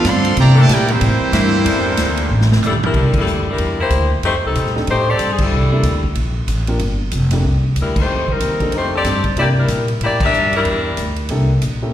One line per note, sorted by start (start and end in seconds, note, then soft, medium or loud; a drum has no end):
0.04 0.36 G2 loud
0.04 0.38 D3 loud
0.04 0.38 F3 loud
0.04 0.38 C4 loud
0.04 0.39 A4 medium
0.04 0.39 D5 loud
0.04 0.39 F5 medium
0.04 0.39 C6 loud
0.04 snare medium
0.04 hi-hat pedal medium
0.04 ride medium
0.25 ride medium
0.37 0.68 C3 loud
0.37 0.56 E3 loud
0.37 0.56 G3 medium
0.37 0.56 A#3 medium
0.37 0.57 G4 medium
0.37 0.57 D5 loud
0.37 0.57 E5 medium
0.37 0.57 A#5 loud
0.37 ride medium
0.55 0.69 A#2 medium
0.55 0.65 E3 loud
0.55 0.70 E3 medium
0.55 0.69 A3 loud
0.55 0.65 A#3 loud
0.55 0.65 D4 medium
0.55 0.71 G4 loud
0.55 0.64 A4 loud
0.55 0.71 E5 medium
0.59 0.71 D5 medium
0.59 0.71 A5 loud
0.69 1.00 A#2 medium
0.69 0.89 A#3 medium
0.69 0.89 E4 medium
0.69 0.90 E4 medium
0.69 0.89 G4 medium
0.69 0.90 A#4 medium
0.69 0.90 D5 medium
0.69 0.90 G5 loud
0.69 snare medium
0.69 hi-hat pedal medium
0.69 ride medium
0.88 2.62 E3 medium
0.88 2.62 G3 medium
0.88 2.63 A#3 medium
0.88 2.62 C4 medium
0.88 2.63 E4 medium
0.88 2.63 G4 medium
0.88 2.63 C5 loud
0.88 ride medium
1.01 1.19 A2 medium
1.01 ride medium
1.21 muted upright bass stroke soft
1.32 1.64 G2 loud
1.32 1.63 E3 loud
1.32 1.63 A#3 medium
1.32 1.63 D4 medium
1.32 1.81 E4 loud
1.32 snare medium
1.32 hi-hat pedal medium
1.32 ride medium
1.64 1.97 E2 medium
1.64 2.53 E3 loud
1.64 2.53 A#3 medium
1.64 2.54 D4 medium
1.64 2.53 A4 loud
1.64 ride medium
1.97 2.28 D2 loud
1.97 snare medium
1.97 hi-hat pedal medium
1.97 ride medium
2.17 ride medium
2.29 2.61 A1 loud
2.41 snare medium
2.52 snare medium
2.62 2.93 A#1 medium
2.62 floor tom medium
2.62 hi-hat pedal medium
2.66 2.74 G3 medium
2.66 2.74 D4 medium
2.66 2.74 E4 medium
2.66 2.74 A4 medium
2.73 floor tom medium
2.83 3.13 G3 medium
2.83 3.13 D4 medium
2.83 3.13 E4 medium
2.83 3.13 A#4 medium
2.83 floor tom loud
2.94 3.12 C2 medium
2.94 3.42 A#3 medium
2.94 3.42 D4 medium
2.94 3.42 E4 soft
2.94 3.42 G4 soft
2.94 3.42 A4 medium
2.94 kick medium
2.94 crash medium
3.13 3.46 G3 medium
3.13 muted upright bass stroke soft
3.13 kick medium
3.13 crash medium
3.17 3.46 D4 medium
3.17 3.46 E4 medium
3.17 3.46 A4 medium
3.26 3.57 D2 medium
3.26 hi-hat pedal soft
3.50 3.78 G3 medium
3.50 3.78 D4 medium
3.50 3.78 E4 medium
3.50 3.78 A#4 medium
3.58 3.90 E2 medium
3.58 ride medium
3.80 4.09 A#3 medium
3.80 4.09 E4 medium
3.80 4.09 G4 medium
3.80 4.09 C5 medium
3.90 4.22 D2 medium
3.90 hi-hat pedal soft
3.90 ride medium
4.23 4.34 F2 medium
4.23 4.33 A3 medium
4.23 4.33 D#4 medium
4.23 4.33 G4 medium
4.23 4.32 C5 medium
4.23 ride medium
4.34 4.44 D#2 medium
4.44 4.54 C2 medium
4.44 4.74 G3 medium
4.44 4.74 C4 medium
4.44 4.73 D#4 medium
4.44 4.73 A4 medium
4.55 4.86 A#2 medium
4.55 hi-hat pedal medium
4.55 ride medium
4.66 snare soft
4.75 4.86 C4 medium
4.75 4.86 D4 medium
4.75 4.86 D#4 medium
4.75 4.86 G4 medium
4.75 4.86 A4 medium
4.75 snare soft
4.87 5.18 A2 medium
4.87 5.07 A3 medium
4.87 5.06 D#4 medium
4.87 5.07 G4 medium
4.87 5.07 C5 loud
4.87 ride medium
5.09 5.32 C4 medium
5.09 5.32 G4 medium
5.09 5.32 A4 medium
5.09 5.32 D5 medium
5.19 5.50 G2 medium
5.19 hi-hat pedal soft
5.19 ride medium
5.33 5.40 G#4 medium
5.38 6.04 G3 medium
5.38 6.04 D4 medium
5.38 6.04 E4 medium
5.38 6.04 A4 medium
5.38 kick medium
5.38 crash medium
5.51 5.82 C2 medium
5.72 5.83 A#3 medium
5.72 5.83 D4 medium
5.72 5.83 E4 medium
5.72 5.83 G4 medium
5.72 5.83 A4 medium
5.83 6.14 D2 medium
5.83 hi-hat pedal medium
5.83 ride medium
6.03 kick soft
6.15 6.47 A#1 medium
6.15 ride medium
6.47 6.79 A1 medium
6.47 hi-hat pedal medium
6.47 ride medium
6.67 6.79 A#3 medium
6.67 6.79 D4 medium
6.67 6.79 F4 medium
6.67 6.79 G4 medium
6.67 6.79 A#4 medium
6.67 ride medium
6.79 7.11 G1 medium
6.79 ride medium
7.11 7.43 F1 medium
7.11 hi-hat pedal medium
7.11 ride medium
7.31 7.43 A#3 medium
7.31 7.43 D4 medium
7.31 7.43 E4 medium
7.31 7.43 G4 medium
7.31 7.43 A4 medium
7.31 snare soft
7.31 ride medium
7.44 7.75 C2 medium
7.76 8.07 D2 medium
7.76 hi-hat pedal medium
7.76 ride medium
7.80 7.97 G3 medium
7.80 7.97 D4 medium
7.80 7.97 E4 medium
7.80 7.97 A#4 medium
7.96 8.28 A3 medium
7.96 8.28 D#4 medium
7.96 8.28 C5 medium
7.96 kick medium
7.96 crash medium
8.00 8.28 G4 medium
8.08 8.39 F2 medium
8.28 8.74 G3 medium
8.28 8.74 C4 medium
8.28 8.74 D#4 medium
8.28 8.74 A#4 medium
8.28 kick soft
8.40 8.72 D#2 medium
8.40 hi-hat pedal soft
8.40 ride medium
8.60 8.72 C4 medium
8.60 8.72 D4 medium
8.60 8.72 D#4 soft
8.60 8.72 G4 soft
8.60 8.72 A4 medium
8.60 kick soft
8.60 ride soft
8.72 9.04 F2 medium
8.72 8.92 A3 medium
8.72 8.92 D#4 medium
8.72 8.93 G4 medium
8.72 8.93 C5 medium
8.72 ride medium
8.95 9.24 C4 medium
8.95 9.24 G4 medium
8.95 9.24 A4 medium
8.95 9.24 D5 medium
9.04 9.35 G2 medium
9.04 9.23 C4 soft
9.04 9.23 D4 soft
9.04 9.23 D#4 soft
9.04 9.23 G4 soft
9.04 9.23 A4 medium
9.04 snare soft
9.04 hi-hat pedal medium
9.04 ride medium
9.24 kick medium
9.24 ride soft
9.36 9.68 C3 medium
9.36 10.26 A#3 medium
9.36 9.47 A#3 medium
9.36 10.26 D4 soft
9.36 10.26 E4 medium
9.36 9.47 E4 medium
9.36 10.26 G4 medium
9.36 9.47 G4 medium
9.36 10.26 A#4 medium
9.36 9.47 D5 medium
9.36 ride medium
9.59 9.88 G3 medium
9.59 9.88 D4 medium
9.59 9.88 E4 medium
9.59 9.88 A#4 medium
9.68 10.00 A#2 medium
9.68 hi-hat pedal medium
9.68 ride medium
9.88 ride soft
10.01 10.32 A2 medium
10.01 10.20 A#3 medium
10.01 10.21 E4 medium
10.01 10.20 G4 medium
10.01 10.20 D5 loud
10.01 ride medium
10.20 10.52 D4 medium
10.20 10.52 G4 medium
10.20 10.52 A#4 medium
10.20 10.52 E5 loud
10.20 kick medium
10.20 crash medium
10.33 10.64 G2 medium
10.33 hi-hat pedal medium
10.53 11.15 G3 medium
10.53 11.15 D4 medium
10.53 11.15 E4 medium
10.53 11.14 A#4 medium
10.53 ride soft
10.65 10.96 E2 medium
10.65 ride medium
10.97 11.29 D2 medium
10.97 hi-hat pedal medium
10.97 ride medium
11.16 ride soft
11.29 11.61 C2 medium
11.29 11.48 A#3 medium
11.29 11.48 D4 medium
11.29 11.48 E4 medium
11.29 11.48 G4 medium
11.29 11.48 A4 medium
11.29 ride medium
11.62 11.93 A#1 medium
11.62 hi-hat pedal medium
11.62 ride medium
11.82 11.93 A#3 medium
11.82 11.93 C#4 soft
11.82 11.93 E4 medium
11.82 11.93 G4 medium
11.82 11.93 A4 medium